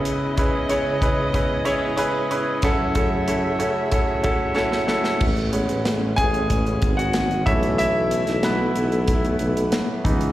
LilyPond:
<<
  \new Staff \with { instrumentName = "Grand piano" } { \time 4/4 \key b \mixolydian \tempo 4 = 93 <cis' e' gis' b'>8 <cis' e' gis' b'>8 <cis' e' gis' cis''>8 <cis' e' gis' b'>8 <cis' e' gis' b'>8 <cis' e' gis' cis''>8 <cis' e' gis' b'>8 <cis' e' gis' b'>8 | <cis' e' fis' a'>8 <cis' e' fis' a'>8 <cis' e' fis' a'>8 <cis' e' fis' a'>8 <cis' e' fis' a'>8 <cis' e' fis' a'>8 <cis' e' fis' a'>8 <cis' e' fis' a'>8 | r4. <gis' gis''>4~ <gis' gis''>16 <fis' fis''>8. <e' e''>8 | <e' e''>4 <b b'>2 r4 | }
  \new Staff \with { instrumentName = "Grand piano" } { \clef bass \time 4/4 \key b \mixolydian <cis gis>2.~ <cis gis>8 r8 | <fis, cis>1 | r8 <gis b cis'>8 r2 r8 <e a cis'>8~ | <e a cis'>2.~ <e a cis'>8 <e b dis'>8 | }
  \new Staff \with { instrumentName = "String section" } { \time 4/4 \key b \mixolydian <cis gis b e' dis''>1 | <fis, fis a gis' e''>1 | <e gis cis'>2.~ <e gis cis'>8 <a b e'>8~ | <a b e'>2.~ <a b e'>8 <cis e gis cis'>8 | }
  \new Staff \with { instrumentName = "Tuba" } { \clef bass \time 4/4 \key b \mixolydian r1 | r1 | a,,8. a,,8. a,,4 gis,,4 b,,8~ | b,,8. b,,8. b,,4 b,,8 r8 cis,8 | }
  \new DrumStaff \with { instrumentName = "Drums" } \drummode { \time 4/4 hh8 <hh bd>8 hh8 <hh bd>8 <hh bd>8 hh8 hh8 hh8 | <hh bd>8 <hh bd>8 hh8 hh8 <hh bd>8 <hh bd>8 sn16 sn16 sn16 sn16 | <cymc bd>16 hh16 hh16 hh16 <hh sn>8 <hh bd>16 hh16 <hh bd>16 hh16 <hh bd>16 hh16 <hh sn>16 hh16 <hh bd>16 hh16 | hh8 hh16 <hh sn>16 <hh sn>8 hh16 hh16 <hh bd>16 hh16 hh16 hh16 <hh sn>8 <hh bd>16 hh16 | }
>>